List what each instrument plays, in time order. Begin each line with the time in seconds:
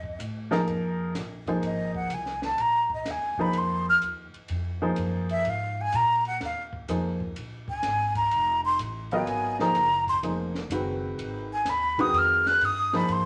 Already playing: upright bass F2, flute D#5
0.03 kick
0.19 upright bass A2, hi-hat pedal, ride
0.51 grand piano F3 A#3 D#4 G#4 A#4, snare
0.67 upright bass F2, ride
1.15 upright bass A#1, snare, hi-hat pedal, ride
1.47 grand piano F3 A#3 D#4 G#4 C5, kick, ride
1.62 upright bass G#1, flute D#5, ride
1.95 flute F#5, kick
2.10 upright bass C2, hi-hat pedal, ride
2.14 flute G#5
2.26 snare
2.42 flute A5, snare
2.58 upright bass A#1, flute A#5, ride
2.90 kick
2.94 flute D#5
3.05 upright bass D#2, snare, hi-hat pedal, ride
3.11 flute G#5
3.38 grand piano F3 A#3 D#4 G#4 C5, flute B5, muted upright bass stroke, kick
3.53 upright bass F2, ride
3.58 flute C6
3.89 flute F6
4.02 upright bass D#2, hi-hat pedal, ride
4.34 muted upright bass stroke, ride
4.48 upright bass F2, ride
4.82 grand piano F3 A#3 D#4 G#4 C5
4.96 upright bass F#2, hi-hat pedal, ride
5.29 flute E5, ride
5.45 upright bass G#2, ride
5.50 flute F5
5.81 flute G#5
5.92 upright bass A#2, flute A#5, hi-hat pedal, ride
6.25 flute F#5, ride
6.41 upright bass D#2, snare, ride
6.45 flute F5
6.73 kick
6.88 upright bass F2, grand piano F3 A#3 D#4 G#4 C5, hi-hat pedal, ride
7.20 kick
7.36 upright bass A#1, ride
7.68 flute G#5, kick
7.83 upright bass G#1, snare, hi-hat pedal, ride
8.15 flute A#5, kick, ride
8.31 upright bass F1, ride
8.65 flute C6
8.79 upright bass A1, hi-hat pedal, ride
9.11 grand piano F#3 B3 F4 A#4 D#5, flute G#5, ride
9.27 upright bass G#1, ride
9.59 grand piano F3 A#3 D#4 G#4 C5, flute A#5, snare
9.75 upright bass F#1, hi-hat pedal, ride
10.07 flute C6, kick, ride
10.23 upright bass F1, grand piano F3 A#3 D#4 G#4 C5, ride
10.55 snare
10.70 upright bass F#1, grand piano D#3 G#3 C4 F#4 B4, hi-hat pedal, ride
11.18 upright bass G#1, ride
11.53 flute G#5
11.65 upright bass D#2, snare, hi-hat pedal, ride
11.69 flute B5
11.98 grand piano D#3 G#3 C4 F#4 B4, flute D#6, kick, ride
12.13 upright bass F2, ride
12.18 flute F6
12.46 flute F#6, snare, ride
12.61 upright bass G2, flute D#6, hi-hat pedal, ride
12.93 grand piano F3 A#3 D#4 G#4 C5, flute B5, snare, ride
13.09 upright bass G#2, flute C6, ride